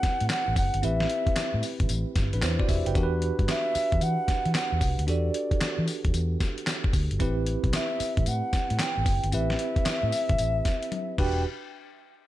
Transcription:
Already playing: tine electric piano C4 E4 G4 B4, ocarina F#5
0.03 muted fingered electric bass stroke, kick, snare, closed hi-hat, tambourine
0.20 fingered electric bass A2, closed hi-hat
0.30 ocarina F#5, snare, clap, closed hi-hat, tambourine
0.48 fingered electric bass A1
0.56 fingered electric bass F#1, ocarina F#5, kick, open hi-hat, tambourine
0.74 fingered electric bass G1, closed hi-hat
0.82 fingered electric bass A1, tine electric piano C4 E4 G4 B4, ocarina E5, closed hi-hat, tambourine
1.00 snare
1.10 closed hi-hat
1.27 muted fingered electric bass stroke, kick, closed hi-hat
1.36 muted fingered electric bass stroke, snare, clap, closed hi-hat, tambourine
1.54 fingered electric bass A2
1.63 open hi-hat, tambourine
1.80 fingered electric bass A1, kick, closed hi-hat
1.89 fingered electric bass A1, closed hi-hat, tambourine
2.16 fingered electric bass G1, kick, snare, closed hi-hat, tambourine
2.33 fingered electric bass A1, tine electric piano D4 B4, closed hi-hat
2.42 fingered electric bass E2, tine electric piano E4 C5, snare, clap, closed hi-hat, tambourine
2.60 tine electric piano F#4 D5, kick
2.69 fingered electric bass E1, tine electric piano G4 E5, kick, open hi-hat, tambourine
2.86 fingered electric bass F#1, tine electric piano B4 G5, closed hi-hat
2.95 fingered electric bass E2, tine electric piano D4 F#4 G4 A#4, kick, closed hi-hat, tambourine
3.03 tine electric piano B4
3.22 closed hi-hat
3.39 fingered electric bass G2, kick, closed hi-hat
3.48 ocarina E5, snare, clap, closed hi-hat, tambourine
3.75 muted fingered electric bass stroke, open hi-hat, tambourine
3.92 fingered electric bass E2, kick, closed hi-hat
4.01 fingered electric bass E3, ocarina F#5, closed hi-hat, tambourine
4.28 muted fingered electric bass stroke, kick, snare, closed hi-hat, tambourine
4.45 fingered electric bass E3, closed hi-hat
4.55 ocarina F#5, snare, clap, closed hi-hat, tambourine
4.72 fingered electric bass E2
4.81 fingered electric bass C2, kick, open hi-hat, tambourine
4.98 fingered electric bass D2, closed hi-hat
5.07 fingered electric bass E2, tine electric piano D4 F#4 G4 A4, ocarina D5, closed hi-hat, tambourine
5.34 closed hi-hat
5.51 muted fingered electric bass stroke, kick, closed hi-hat
5.61 muted fingered electric bass stroke, snare, clap, closed hi-hat, tambourine
5.79 fingered electric bass E3
5.88 open hi-hat, tambourine
6.05 fingered electric bass E2, kick, closed hi-hat
6.14 fingered electric bass E2, closed hi-hat, tambourine
6.40 kick, snare, closed hi-hat, tambourine
6.58 closed hi-hat
6.67 snare, clap, closed hi-hat, tambourine
6.84 kick
6.93 fingered electric bass D2, kick, open hi-hat, tambourine
7.11 fingered electric bass G1, closed hi-hat
7.19 fingered electric bass A1, tine electric piano C4 E4 G4 B4, kick, closed hi-hat, tambourine
7.46 closed hi-hat
7.64 fingered electric bass B1, kick, closed hi-hat
7.73 ocarina E5, snare, clap, closed hi-hat, tambourine
8.00 muted fingered electric bass stroke, open hi-hat, tambourine
8.17 fingered electric bass A1, kick, closed hi-hat
8.26 fingered electric bass A2, ocarina F#5, closed hi-hat, tambourine
8.53 muted fingered electric bass stroke, kick, snare, closed hi-hat, tambourine
8.70 fingered electric bass A2, closed hi-hat
8.79 ocarina G5, snare, clap, closed hi-hat, tambourine
8.97 fingered electric bass A1
9.06 fingered electric bass F#1, kick, open hi-hat, tambourine
9.24 fingered electric bass G1, closed hi-hat
9.32 fingered electric bass A1, tine electric piano C4 E4 G4 B4, ocarina E5, closed hi-hat, tambourine
9.50 snare
9.59 closed hi-hat
9.76 muted fingered electric bass stroke, kick, closed hi-hat
9.85 muted fingered electric bass stroke, snare, clap, closed hi-hat, tambourine
10.03 fingered electric bass A2
10.12 open hi-hat, tambourine
10.29 fingered electric bass A1, kick, closed hi-hat
10.38 fingered electric bass A1, closed hi-hat, tambourine
10.65 kick, snare, closed hi-hat, tambourine
10.83 closed hi-hat
10.92 closed hi-hat, high tom
11.18 fingered electric bass E1, tine electric piano D4 F#4 G4 B4, ocarina G5, kick, crash

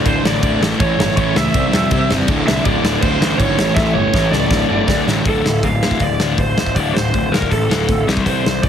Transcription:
0.06 picked electric bass D1, distorted electric guitar D2 A2 D3, lead electric guitar C5, kick, crash
0.24 picked electric bass A1, distorted electric guitar D2 A2 D3, lead electric guitar D5, snare
0.42 picked electric bass D1, distorted electric guitar D2 A2 D3, kick, crash
0.61 picked electric bass A1, distorted electric guitar A2 E3 A3, snare
0.80 picked electric bass A1, distorted electric guitar A2 E3 A3, lead electric guitar C#5, kick, crash
0.98 picked electric bass G1, distorted electric guitar A2 E3 A3, snare
1.17 picked electric bass A1, distorted electric guitar A2 E3 A3, lead electric guitar C#5, kick, crash
1.35 picked electric bass C#2, distorted electric guitar A2 E3 A3, lead electric guitar E5, snare
1.54 picked electric bass C2, distorted electric guitar C3 G3 C4, kick, crash
1.73 picked electric bass F2, distorted electric guitar C3 G3 C4, snare
1.91 picked electric bass C3, distorted electric guitar C3 G3 C4, kick, crash
2.10 picked electric bass G1, distorted electric guitar C3 G3 C4, snare
2.28 picked electric bass D1, distorted electric guitar D2 A2 D3, kick, crash
2.46 picked electric bass C2, distorted electric guitar D2 A2 D3, lead electric guitar E5, snare
2.65 picked electric bass D1, distorted electric guitar D2 A2 D3, lead electric guitar D5, kick, crash
2.83 picked electric bass D1, distorted electric guitar D2 A2 D3, snare
3.01 picked electric bass D1, distorted electric guitar D2 A2 D3, lead electric guitar C5, kick, crash
3.21 picked electric bass A1, distorted electric guitar D2 A2 D3, snare
3.38 picked electric bass G#1, distorted electric guitar D2 A2 D3, lead electric guitar C#5, kick, crash
3.58 picked electric bass A1, distorted electric guitar A2 E3 A3, snare
3.75 picked electric bass A1, distorted electric guitar A2 E3 A3, lead electric guitar E5, kick, snare
3.94 picked electric bass G1, distorted electric guitar A2 E3 A3, lead electric guitar C#5
4.13 picked electric bass A1, distorted electric guitar A2 E3 A3, kick, snare
4.32 picked electric bass C#2, distorted electric guitar A2 E3 A3, lead electric guitar D5, snare
4.50 picked electric bass D1, distorted electric guitar D2 A2 D3, kick, snare
4.69 picked electric bass G1, distorted electric guitar D2 A2 D3
4.88 picked electric bass D2, distorted electric guitar D2 A2 D3, kick, snare
5.07 picked electric bass A1, distorted electric guitar D2 A2 D3, snare
5.26 picked electric bass D1, distorted electric guitar D2 A2 D3, lead electric guitar A4, kick, open hi-hat
5.44 picked electric bass D1, distorted electric guitar D2 A2, snare
5.63 picked electric bass D1, distorted electric guitar D2 A2, lead electric guitar F5, kick, open hi-hat
5.82 distorted electric guitar D2 A2 D3, snare
5.91 kick
6.00 picked electric bass D1, distorted electric guitar D2 A2, lead electric guitar D5, kick, open hi-hat
6.20 picked electric bass D1, distorted electric guitar D2 A2 D3, snare
6.38 picked electric bass D1, distorted electric guitar D2 A2, lead electric guitar C5, kick, open hi-hat
6.57 picked electric bass D1, distorted electric guitar D2 A2, snare
6.66 kick
6.76 picked electric bass D1, distorted electric guitar D2 A2 D3, lead electric guitar D5, kick, open hi-hat
6.94 picked electric bass D1, distorted electric guitar D2 A2, lead electric guitar C5, snare
7.14 picked electric bass D1, distorted electric guitar D2 A2, kick, open hi-hat
7.32 picked electric bass D1, distorted electric guitar D2 A2 D3, lead electric guitar A#4, snare
7.42 kick
7.51 picked electric bass A1, distorted electric guitar D2 A2, lead electric guitar A4, kick, open hi-hat
7.69 picked electric bass D1, distorted electric guitar D2 A2 D3, snare
7.88 picked electric bass D1, distorted electric guitar D2 A2, kick, open hi-hat
8.07 picked electric bass C2, distorted electric guitar C3 G3 C4, snare
8.17 kick
8.26 picked electric bass C2, distorted electric guitar C3 G3 C4, lead electric guitar C5, kick, open hi-hat
8.44 picked electric bass C2, distorted electric guitar C3 G3, snare
8.63 picked electric bass C2, distorted electric guitar C3 G3, lead electric guitar D5, kick, open hi-hat

